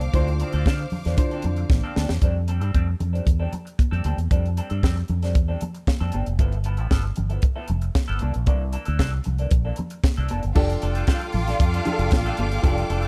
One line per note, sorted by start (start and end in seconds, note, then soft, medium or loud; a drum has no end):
0.00 0.13 D3 medium
0.00 0.14 D4 medium
0.00 0.14 F4 medium
0.00 2.24 A4 loud
0.00 0.15 C5 medium
0.00 2.18 C5 medium
0.00 2.18 F5 medium
0.00 2.18 D6 medium
0.00 muted clean electric guitar stroke soft
0.00 closed hi-hat medium
0.13 0.42 D2 loud
0.13 0.97 D3 medium
0.13 0.29 F3 medium
0.13 0.29 C4 medium
0.13 0.98 D4 medium
0.13 0.29 D4 medium
0.13 0.98 F4 medium
0.13 0.29 A4 medium
0.13 0.98 C5 loud
0.13 kick loud
0.13 closed hi-hat medium
0.13 muted conga medium
0.28 closed hi-hat soft
0.40 0.52 F3 medium
0.40 0.52 C4 medium
0.40 0.52 D4 medium
0.40 0.52 A4 medium
0.40 closed hi-hat medium
0.40 muted conga soft
0.53 0.63 D2 loud
0.53 0.65 F3 medium
0.53 0.65 C4 medium
0.53 0.65 D4 medium
0.53 0.65 A4 medium
0.53 closed hi-hat soft
0.66 0.85 D3 medium
0.66 0.81 F3 medium
0.66 0.79 C4 medium
0.66 0.79 D4 medium
0.66 0.78 A4 medium
0.66 kick loud
0.66 snare medium
0.66 high conga medium
0.79 muted clean electric guitar stroke medium
0.79 closed hi-hat soft
0.90 muted clean electric guitar stroke soft
0.90 open hi-hat medium
0.90 low conga medium
1.05 1.15 E2 medium
1.05 1.17 F3 soft
1.05 1.17 C4 medium
1.05 1.17 D4 medium
1.05 1.17 A4 medium
1.05 snare soft
1.05 closed hi-hat soft
1.17 2.01 D3 medium
1.17 2.01 D4 medium
1.17 2.02 F4 medium
1.17 2.02 C5 medium
1.17 muted clean electric guitar stroke soft
1.17 kick loud
1.17 closed hi-hat loud
1.17 muted conga soft
1.31 1.43 F3 medium
1.31 1.44 C4 medium
1.31 1.44 D4 medium
1.31 1.44 A4 medium
1.31 closed hi-hat soft
1.42 1.63 F2 medium
1.42 muted clean electric guitar stroke soft
1.42 closed hi-hat medium
1.42 muted conga medium
1.42 low conga medium
1.56 muted clean electric guitar stroke soft
1.56 closed hi-hat soft
1.70 1.79 A1 medium
1.70 muted clean electric guitar stroke soft
1.70 kick loud
1.70 snare medium
1.70 high conga medium
1.84 1.96 F3 medium
1.84 1.96 C4 medium
1.84 1.96 D4 medium
1.84 1.97 A4 medium
1.96 2.06 D2 medium
1.96 2.08 F3 medium
1.96 2.08 C4 medium
1.96 2.08 D4 medium
1.96 2.08 A4 medium
1.96 snare medium
1.96 high conga medium
2.09 2.19 E2 medium
2.09 muted clean electric guitar stroke medium
2.09 snare medium
2.22 2.61 F2 medium
2.22 2.37 G3 medium
2.22 2.37 C4 medium
2.22 2.38 D4 medium
2.22 2.38 A4 medium
2.22 kick medium
2.22 closed hi-hat medium
2.22 muted conga soft
2.48 2.60 G3 medium
2.48 2.60 C4 medium
2.48 2.60 D4 medium
2.48 2.60 A4 medium
2.48 closed hi-hat medium
2.48 muted conga soft
2.61 2.71 G2 medium
2.61 2.73 G3 soft
2.61 2.73 C4 medium
2.61 2.73 D4 medium
2.61 2.73 A4 medium
2.61 closed hi-hat soft
2.74 2.93 F2 medium
2.74 2.89 G3 medium
2.74 2.88 C4 medium
2.74 2.87 D4 medium
2.74 2.87 A4 medium
2.74 kick medium
2.74 closed hi-hat medium
2.74 high conga medium
2.88 muted clean electric guitar stroke soft
2.99 3.19 F2 medium
2.99 muted clean electric guitar stroke soft
2.99 closed hi-hat medium
2.99 low conga medium
3.13 3.25 G3 soft
3.13 3.25 C4 soft
3.13 3.25 D4 medium
3.13 3.25 A4 medium
3.13 closed hi-hat soft
3.25 3.45 E2 medium
3.25 muted clean electric guitar stroke soft
3.25 kick loud
3.25 closed hi-hat medium
3.25 muted conga soft
3.39 3.52 G3 medium
3.39 3.52 C4 medium
3.39 3.52 D4 medium
3.39 3.52 A4 medium
3.53 muted clean electric guitar stroke soft
3.53 closed hi-hat medium
3.53 muted conga soft
3.53 low conga medium
3.65 muted clean electric guitar stroke soft
3.65 closed hi-hat soft
3.79 muted clean electric guitar stroke soft
3.79 kick medium
3.79 closed hi-hat medium
3.79 high conga medium
3.91 4.01 F2 medium
3.91 4.04 G3 medium
3.91 4.04 C4 medium
3.91 4.04 D4 medium
3.91 4.05 A4 medium
3.91 closed hi-hat soft
4.04 4.14 D2 medium
4.04 4.16 G3 medium
4.04 4.16 C4 medium
4.04 4.17 D4 medium
4.04 4.16 A4 medium
4.04 closed hi-hat medium
4.04 high conga medium
4.17 4.27 E2 medium
4.17 muted clean electric guitar stroke soft
4.17 closed hi-hat soft
4.31 4.59 F2 medium
4.31 4.46 G3 medium
4.31 4.46 C4 medium
4.31 4.46 D4 medium
4.31 4.46 A4 medium
4.31 kick loud
4.31 closed hi-hat medium
4.31 muted conga soft
4.46 closed hi-hat soft
4.57 4.69 G3 medium
4.57 4.69 C4 medium
4.57 4.69 D4 medium
4.57 4.69 A4 medium
4.57 closed hi-hat medium
4.70 4.80 G2 medium
4.70 4.82 G3 soft
4.70 4.82 C4 medium
4.70 4.82 D4 medium
4.70 4.82 A4 medium
4.70 closed hi-hat soft
4.83 5.02 F2 medium
4.83 4.98 G3 medium
4.83 4.96 C4 medium
4.83 4.96 D4 medium
4.83 4.95 A4 medium
4.83 kick medium
4.83 snare loud
4.83 high conga medium
4.96 muted clean electric guitar stroke soft
4.96 closed hi-hat soft
5.08 5.35 F2 medium
5.08 muted clean electric guitar stroke soft
5.08 closed hi-hat medium
5.08 low conga medium
5.22 5.34 G3 soft
5.22 5.35 C4 medium
5.22 5.34 D4 medium
5.22 5.34 A4 medium
5.22 snare soft
5.22 closed hi-hat soft
5.35 5.54 E2 medium
5.35 muted clean electric guitar stroke soft
5.35 kick loud
5.35 closed hi-hat medium
5.35 muted conga soft
5.48 5.60 G3 medium
5.48 5.61 C4 medium
5.48 5.61 D4 medium
5.48 5.61 A4 medium
5.61 muted clean electric guitar stroke soft
5.61 closed hi-hat medium
5.61 muted conga soft
5.61 low conga medium
5.74 muted clean electric guitar stroke soft
5.74 closed hi-hat soft
5.87 muted clean electric guitar stroke soft
5.87 kick medium
5.87 snare medium
5.87 high conga medium
6.00 6.10 F2 medium
6.00 6.12 G3 medium
6.00 6.13 C4 medium
6.00 6.13 D4 medium
6.00 6.13 A4 medium
6.00 closed hi-hat soft
6.12 6.23 G1 medium
6.12 6.25 G3 medium
6.12 6.25 C4 medium
6.12 6.25 D4 medium
6.12 6.25 A4 medium
6.12 closed hi-hat medium
6.12 high conga medium
6.26 6.39 F1 medium
6.26 muted clean electric guitar stroke soft
6.26 closed hi-hat soft
6.39 6.79 G1 medium
6.39 6.54 F3 medium
6.39 6.54 B3 medium
6.39 6.54 E4 medium
6.39 6.55 A4 medium
6.39 kick loud
6.39 closed hi-hat medium
6.39 muted conga soft
6.52 closed hi-hat soft
6.64 6.77 F3 medium
6.64 6.77 B3 medium
6.64 6.77 E4 medium
6.64 6.77 A4 medium
6.64 closed hi-hat medium
6.77 6.88 A1 medium
6.77 6.89 F3 soft
6.77 6.90 B3 soft
6.77 6.90 E4 medium
6.77 6.90 A4 medium
6.77 closed hi-hat soft
6.90 7.10 G1 medium
6.90 7.06 F3 medium
6.90 7.03 B3 medium
6.90 7.03 E4 medium
6.90 7.03 A4 medium
6.90 kick medium
6.90 snare medium
6.90 high conga medium
7.04 muted clean electric guitar stroke medium
7.16 7.37 G1 medium
7.16 muted clean electric guitar stroke soft
7.16 closed hi-hat medium
7.16 low conga medium
7.29 7.42 F3 soft
7.29 7.42 B3 medium
7.29 7.42 E4 medium
7.29 7.42 A4 medium
7.29 closed hi-hat soft
7.42 muted clean electric guitar stroke soft
7.42 kick loud
7.42 closed hi-hat medium
7.42 muted conga soft
7.56 7.67 F3 medium
7.56 7.67 B3 medium
7.56 7.68 E4 medium
7.56 7.68 A4 medium
7.68 7.88 F1 medium
7.68 muted clean electric guitar stroke soft
7.68 closed hi-hat medium
7.68 muted conga soft
7.68 low conga medium
7.81 muted clean electric guitar stroke soft
7.81 closed hi-hat soft
7.95 muted clean electric guitar stroke soft
7.95 kick loud
7.95 snare medium
7.95 high conga medium
8.08 8.18 G1 medium
8.08 8.20 F3 medium
8.08 8.21 B3 medium
8.08 8.21 E4 medium
8.08 8.21 A4 medium
8.19 8.32 C2 medium
8.19 8.33 E3 medium
8.19 8.33 A#3 medium
8.19 8.33 D4 medium
8.19 8.33 A4 medium
8.19 closed hi-hat medium
8.19 high conga medium
8.34 8.47 A#1 medium
8.34 muted clean electric guitar stroke medium
8.34 closed hi-hat medium
8.46 8.76 C2 loud
8.46 8.62 E3 medium
8.46 8.62 A#3 medium
8.46 8.62 D4 medium
8.46 8.63 A4 medium
8.46 kick loud
8.46 closed hi-hat medium
8.46 muted conga soft
8.72 8.85 E3 medium
8.72 8.85 A#3 medium
8.72 8.84 D4 medium
8.72 8.84 A4 medium
8.72 closed hi-hat medium
8.85 8.97 D2 medium
8.85 8.97 E3 medium
8.85 8.98 A#3 medium
8.85 8.98 D4 medium
8.85 8.98 A4 medium
8.85 closed hi-hat soft
8.99 9.18 C2 loud
8.99 9.14 E3 medium
8.99 9.11 A#3 medium
8.99 9.11 D4 medium
8.99 9.11 A4 medium
8.99 kick medium
8.99 snare medium
8.99 high conga medium
9.12 muted clean electric guitar stroke soft
9.24 9.45 C2 medium
9.24 muted clean electric guitar stroke soft
9.24 closed hi-hat medium
9.24 low conga medium
9.38 9.50 E3 soft
9.38 9.51 A#3 soft
9.38 9.51 D4 medium
9.38 9.51 A4 medium
9.38 closed hi-hat soft
9.51 9.71 A#1 medium
9.51 muted clean electric guitar stroke soft
9.51 kick loud
9.51 closed hi-hat medium
9.51 muted conga soft
9.65 9.77 E3 medium
9.65 9.77 A#3 medium
9.65 9.77 D4 medium
9.65 9.77 A4 medium
9.76 muted clean electric guitar stroke soft
9.76 closed hi-hat medium
9.76 muted conga soft
9.76 low conga medium
9.90 muted clean electric guitar stroke soft
9.90 closed hi-hat soft
10.04 muted clean electric guitar stroke soft
10.04 kick loud
10.04 snare medium
10.04 high conga medium
10.17 10.27 C2 medium
10.17 10.29 E3 medium
10.17 10.29 A#3 medium
10.17 10.30 D4 medium
10.17 10.30 A4 medium
10.17 closed hi-hat soft
10.28 10.40 F1 medium
10.28 10.42 E3 medium
10.28 10.42 A#3 medium
10.28 10.42 D4 medium
10.28 10.42 A4 medium
10.28 closed hi-hat medium
10.28 high conga medium
10.43 10.53 G1 medium
10.43 muted clean electric guitar stroke soft
10.43 closed hi-hat soft
10.54 10.75 F1 loud
10.54 11.39 F3 medium
10.54 10.71 G3 medium
10.54 11.39 D4 medium
10.54 10.72 D4 medium
10.54 13.08 F4 loud
10.54 10.72 F4 medium
10.54 11.39 G4 medium
10.54 11.40 A4 loud
10.54 13.08 A4 medium
10.54 10.72 A4 medium
10.54 13.08 F5 loud
10.54 13.08 G5 medium
10.54 13.08 D6 loud
10.54 kick loud
10.54 crash loud
10.54 muted conga medium
10.70 closed hi-hat medium
10.82 11.01 F1 loud
10.82 10.94 G3 medium
10.82 10.94 D4 medium
10.82 10.94 F4 medium
10.82 10.93 A4 medium
10.82 closed hi-hat medium
10.82 muted conga soft
10.95 11.07 G3 medium
10.95 11.07 D4 medium
10.95 11.07 F4 medium
10.95 11.07 A4 medium
10.95 closed hi-hat medium
11.08 11.23 G3 medium
11.08 11.20 D4 medium
11.08 11.21 F4 medium
11.08 11.20 A4 medium
11.08 kick loud
11.08 snare medium
11.08 clap medium
11.08 high conga medium
11.21 muted clean electric guitar stroke soft
11.21 closed hi-hat medium
11.32 11.53 A1 medium
11.32 muted clean electric guitar stroke soft
11.32 open hi-hat medium
11.32 low conga medium
11.47 11.60 G3 medium
11.47 11.59 D4 medium
11.47 11.59 F4 medium
11.47 11.59 A4 medium
11.47 snare soft
11.47 closed hi-hat soft
11.59 11.79 F2 loud
11.59 muted clean electric guitar stroke medium
11.59 kick loud
11.59 closed hi-hat medium
11.59 muted conga soft
11.74 11.86 G3 medium
11.74 11.86 D4 medium
11.74 11.87 F4 medium
11.74 11.87 A4 medium
11.74 closed hi-hat medium
11.85 12.48 F3 loud
11.85 12.48 D4 medium
11.85 12.48 G4 medium
11.85 11.92 G#4 medium
11.85 muted clean electric guitar stroke soft
11.85 closed hi-hat medium
11.85 muted conga medium
11.85 low conga medium
11.92 12.52 A4 loud
11.99 12.08 F1 loud
11.99 muted clean electric guitar stroke medium
11.99 closed hi-hat medium
12.12 muted clean electric guitar stroke soft
12.12 kick loud
12.12 snare loud
12.12 clap loud
12.12 high conga medium
12.26 12.37 G3 medium
12.26 12.37 D4 medium
12.26 12.37 F4 medium
12.26 12.38 A4 loud
12.26 closed hi-hat soft
12.37 12.57 G1 medium
12.37 12.50 G3 medium
12.37 12.50 D4 medium
12.37 12.50 F4 medium
12.37 12.50 A4 medium
12.37 closed hi-hat medium
12.37 high conga medium
12.51 muted clean electric guitar stroke soft
12.51 closed hi-hat medium
12.62 12.82 F1 loud
12.62 13.08 F3 medium
12.62 12.84 G3 medium
12.62 13.08 D4 medium
12.62 12.84 D4 medium
12.62 12.84 F4 medium
12.62 13.08 G4 medium
12.62 13.08 A4 loud
12.62 12.85 A4 loud
12.62 kick loud
12.62 closed hi-hat medium
12.62 muted conga medium
12.78 closed hi-hat medium
12.90 13.08 F1 loud
12.90 13.01 G3 medium
12.90 13.02 D4 medium
12.90 13.01 F4 medium
12.90 13.01 A4 medium
12.90 closed hi-hat medium
12.90 muted conga soft
13.02 13.08 G3 medium
13.02 13.08 D4 medium
13.02 13.08 F4 medium
13.02 13.08 A4 medium
13.02 closed hi-hat medium